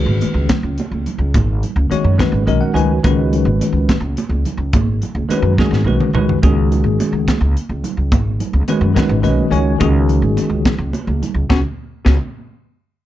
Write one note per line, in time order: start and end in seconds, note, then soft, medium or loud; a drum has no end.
0.00 0.57 D#3 medium
0.00 0.57 G#3 medium
0.00 0.58 C#4 medium
0.00 0.58 F#4 medium
0.00 0.58 B4 medium
0.06 0.20 G#1 medium
0.06 high conga medium
0.20 muted upright bass stroke soft
0.20 closed hi-hat medium
0.20 muted conga medium
0.20 low conga soft
0.34 0.48 C#2 medium
0.49 kick medium
0.49 snare loud
0.49 closed hi-hat medium
0.49 high conga medium
0.49 low conga medium
0.63 0.77 C#2 medium
0.63 low conga soft
0.78 closed hi-hat medium
0.78 muted conga medium
0.92 1.05 C#2 medium
0.92 high conga medium
1.06 closed hi-hat medium
1.06 low conga medium
1.18 1.33 C#2 medium
1.34 1.61 G#1 medium
1.34 kick loud
1.34 closed hi-hat medium
1.34 muted conga medium
1.34 high conga medium
1.34 low conga soft
1.63 closed hi-hat medium
1.63 low conga medium
1.76 1.90 C#2 medium
1.76 high conga medium
1.90 2.14 D#3 medium
1.90 2.14 G#3 medium
1.90 2.14 C#4 medium
1.90 2.15 F#4 medium
1.90 2.15 C#5 medium
1.90 muted upright bass stroke soft
1.90 closed hi-hat medium
1.90 muted conga medium
1.90 low conga soft
2.04 2.18 F#2 medium
2.18 2.42 D#3 medium
2.18 2.42 G#3 medium
2.18 2.42 C#4 medium
2.18 2.42 F#4 medium
2.18 2.42 B4 medium
2.18 kick medium
2.18 snare loud
2.18 closed hi-hat medium
2.18 high conga medium
2.18 low conga medium
2.32 2.46 G#1 medium
2.32 low conga soft
2.46 2.60 B1 medium
2.46 2.70 D#3 medium
2.46 2.70 G#3 medium
2.46 2.71 C#4 medium
2.46 2.71 F#4 medium
2.46 2.71 A#4 medium
2.46 2.61 D#5 medium
2.46 closed hi-hat medium
2.46 muted conga medium
2.61 2.74 F#5 medium
2.61 high conga medium
2.73 3.01 C#2 medium
2.73 2.98 D#3 medium
2.73 2.98 G#3 medium
2.73 2.98 C#4 medium
2.73 2.98 F#4 medium
2.73 2.99 B4 medium
2.73 3.01 G#5 medium
2.73 closed hi-hat medium
2.73 low conga medium
3.03 3.44 C#2 medium
3.03 3.96 D#3 medium
3.03 3.96 G#3 medium
3.03 3.97 C#4 medium
3.03 3.97 F#4 medium
3.03 3.97 B4 medium
3.03 kick loud
3.03 closed hi-hat medium
3.03 muted conga medium
3.03 high conga medium
3.03 low conga soft
3.33 closed hi-hat medium
3.33 low conga medium
3.45 3.58 G#1 medium
3.45 high conga medium
3.59 muted upright bass stroke soft
3.59 closed hi-hat medium
3.59 muted conga medium
3.59 low conga soft
3.72 3.87 C#2 medium
3.89 kick medium
3.89 snare loud
3.89 closed hi-hat medium
3.89 high conga medium
3.89 low conga medium
4.00 4.15 C#2 medium
4.04 low conga soft
4.17 closed hi-hat medium
4.17 muted conga medium
4.29 4.43 C#2 medium
4.29 high conga medium
4.45 closed hi-hat medium
4.45 low conga medium
4.57 4.71 C#2 medium
4.73 5.00 G#1 medium
4.73 kick loud
4.73 closed hi-hat medium
4.73 muted conga medium
4.73 high conga medium
4.73 low conga soft
5.02 closed hi-hat medium
5.02 low conga medium
5.15 5.27 C#2 medium
5.15 high conga medium
5.15 low conga soft
5.28 5.52 D#3 medium
5.28 5.53 G#3 medium
5.28 5.53 C#4 medium
5.28 5.53 F#4 medium
5.28 5.53 B4 medium
5.28 muted upright bass stroke soft
5.28 closed hi-hat medium
5.28 muted conga medium
5.42 5.56 F#2 medium
5.58 5.81 D#3 medium
5.58 5.81 G#3 medium
5.58 5.81 C#4 medium
5.58 5.82 F#4 medium
5.58 5.82 G#4 medium
5.58 kick medium
5.58 snare medium
5.58 high conga medium
5.58 low conga medium
5.71 5.84 G#1 medium
5.71 snare medium
5.71 low conga soft
5.84 5.98 B1 medium
5.84 6.09 D#3 medium
5.84 6.09 G#3 medium
5.84 6.10 C#4 medium
5.84 6.10 F#4 medium
5.84 6.10 B4 medium
5.84 muted conga medium
6.00 mid tom medium
6.00 high conga medium
6.00 low conga soft
6.13 6.40 C#2 medium
6.13 6.37 D#3 medium
6.13 6.37 G#3 medium
6.13 6.37 C#4 medium
6.13 6.38 F#4 medium
6.13 6.38 B4 medium
6.13 mid tom medium
6.13 low conga loud
6.29 floor tom medium
6.42 6.82 C#2 medium
6.42 7.35 D#3 medium
6.42 7.35 G#3 medium
6.42 7.35 C#4 medium
6.42 7.36 F#4 medium
6.42 7.36 G#4 medium
6.42 kick loud
6.42 closed hi-hat medium
6.42 muted conga medium
6.42 high conga medium
6.42 low conga soft
6.72 closed hi-hat medium
6.72 low conga medium
6.84 6.98 G#1 medium
6.84 high conga medium
6.98 muted upright bass stroke soft
6.98 closed hi-hat medium
6.98 muted conga medium
6.98 low conga soft
7.12 7.26 C#2 medium
7.28 kick medium
7.28 snare loud
7.28 closed hi-hat medium
7.28 high conga medium
7.28 low conga medium
7.41 7.54 C#2 medium
7.41 low conga soft
7.57 closed hi-hat medium
7.69 7.83 C#2 medium
7.69 high conga medium
7.84 closed hi-hat medium
7.84 low conga medium
7.97 8.11 C#2 medium
8.12 8.38 G#1 medium
8.12 kick loud
8.12 closed hi-hat medium
8.12 muted conga medium
8.12 high conga medium
8.12 low conga soft
8.40 closed hi-hat medium
8.40 low conga medium
8.53 8.67 C#2 medium
8.53 high conga medium
8.68 8.91 D#3 medium
8.68 8.92 G#3 medium
8.68 8.91 C#4 medium
8.68 8.92 F#4 medium
8.68 8.92 B4 medium
8.68 closed hi-hat medium
8.68 muted conga medium
8.68 low conga soft
8.81 8.95 F#2 medium
8.94 9.18 D#3 medium
8.94 9.19 G#3 medium
8.94 9.19 C#4 medium
8.94 9.19 F#4 medium
8.94 9.19 B4 medium
8.94 kick medium
8.94 snare loud
8.94 closed hi-hat medium
8.94 high conga medium
8.94 low conga medium
9.09 9.22 G#1 medium
9.09 low conga soft
9.22 9.37 B1 medium
9.22 9.46 D#3 medium
9.22 9.47 G#3 medium
9.22 9.47 C#4 medium
9.22 9.47 F#4 medium
9.22 9.47 B4 medium
9.22 9.50 D#5 medium
9.22 closed hi-hat medium
9.22 muted conga medium
9.39 high conga medium
9.50 9.78 C#2 medium
9.50 9.75 D#3 medium
9.50 9.75 G#3 medium
9.50 9.75 C#4 medium
9.50 9.75 F#4 medium
9.50 9.75 C#5 medium
9.50 9.78 G#5 medium
9.50 closed hi-hat medium
9.50 low conga medium
9.79 10.21 C#2 loud
9.79 10.72 D#3 medium
9.79 10.73 G#3 medium
9.79 10.73 C#4 medium
9.79 10.73 F#4 medium
9.79 10.73 G#4 medium
9.79 kick loud
9.79 closed hi-hat medium
9.79 muted conga medium
9.79 high conga medium
9.79 low conga soft
10.09 closed hi-hat medium
10.09 low conga medium
10.22 10.35 G#1 medium
10.22 high conga medium
10.36 muted upright bass stroke soft
10.36 closed hi-hat medium
10.36 muted conga medium
10.36 low conga soft
10.49 10.64 C#2 medium
10.65 kick medium
10.65 snare loud
10.65 closed hi-hat medium
10.65 high conga medium
10.65 low conga medium
10.78 10.92 C#2 medium
10.78 low conga soft
10.93 closed hi-hat medium
10.93 muted conga medium
11.07 11.21 C#2 medium
11.07 high conga medium
11.22 closed hi-hat medium
11.22 low conga medium
11.34 11.48 C#2 medium
11.50 11.60 C#2 medium
11.50 11.59 B3 loud
11.50 11.59 C#4 medium
11.50 11.59 F#4 medium
11.50 kick medium
11.50 snare medium
11.50 muted conga medium
12.05 12.17 C#2 medium
12.05 12.15 B3 medium
12.05 12.15 C#4 medium
12.05 12.14 F#4 medium
12.05 kick medium
12.05 snare medium
12.05 muted conga medium